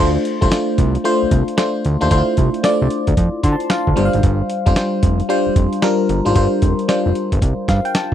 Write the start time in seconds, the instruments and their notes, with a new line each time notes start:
0.00 analog synth bass D2, fm electric piano A3 D4 F4 C5
0.25 closed hi-hat
0.41 analog synth bass C2, fm electric piano A3 D4 F4 C5, kick, closed hi-hat
0.51 fm electric piano A3 D4 F4 C5, snare, closed hi-hat
0.78 analog synth bass C2, kick, closed hi-hat
0.95 closed hi-hat
1.04 fm electric piano A3 D4 F4 C5, closed hi-hat
1.22 analog synth bass C2
1.31 analog synth bass C2, kick, closed hi-hat
1.48 closed hi-hat
1.57 fm electric piano A3 D4 F4 C5, snare, closed hi-hat
1.85 analog synth bass D2, closed hi-hat
2.01 analog synth bass D#2, fm electric piano A3 D4 F4 C5, closed hi-hat
2.10 analog synth bass D2, fm electric piano A3 D4 E4 C5, kick, closed hi-hat
2.18 fm electric piano F4
2.37 analog synth bass C2, kick, closed hi-hat
2.54 closed hi-hat
2.63 fm electric piano A3 D4 F4 D5, snare, closed hi-hat
2.82 analog synth bass C2
2.90 closed hi-hat
3.07 analog synth bass D2, kick, closed hi-hat
3.17 analog synth bass F2, kick, closed hi-hat
3.43 analog synth bass D3, fm electric piano C6, kick, closed hi-hat
3.52 fm electric piano A5
3.60 closed hi-hat
3.70 fm electric piano F5, snare, closed hi-hat
3.87 analog synth bass D2, kick
3.96 analog synth bass G1, fm electric piano G3 D4 F4 C5, closed hi-hat
4.05 fm electric piano F5
4.13 analog synth bass G#1, closed hi-hat
4.23 analog synth bass G1, kick, closed hi-hat
4.50 closed hi-hat
4.66 analog synth bass F1, fm electric piano G3 D4 F4 C5, kick, closed hi-hat
4.76 fm electric piano G3 D4 F4 C5, snare, closed hi-hat
5.03 analog synth bass F1, kick, closed hi-hat
5.20 closed hi-hat
5.29 fm electric piano G3 D4 F4 C5, closed hi-hat
5.46 analog synth bass F1
5.56 analog synth bass F1, kick, closed hi-hat
5.73 closed hi-hat
5.82 fm electric piano G3 D4 F4 A#4, snare, closed hi-hat
6.09 analog synth bass G1, closed hi-hat
6.25 analog synth bass G#1, fm electric piano G3 D4 F4 C5, closed hi-hat
6.35 analog synth bass G1, fm electric piano G3 D4 F4 C5, kick, closed hi-hat
6.62 analog synth bass F1, kick, closed hi-hat
6.79 closed hi-hat
6.88 fm electric piano G3 D4 F4 C5, snare, closed hi-hat
7.06 analog synth bass F1
7.15 closed hi-hat
7.32 analog synth bass G1, kick, closed hi-hat
7.42 analog synth bass C2, kick, closed hi-hat
7.68 analog synth bass G2, fm electric piano F5, kick, snare, closed hi-hat
7.85 fm electric piano G5, closed hi-hat
7.95 fm electric piano A5, snare, closed hi-hat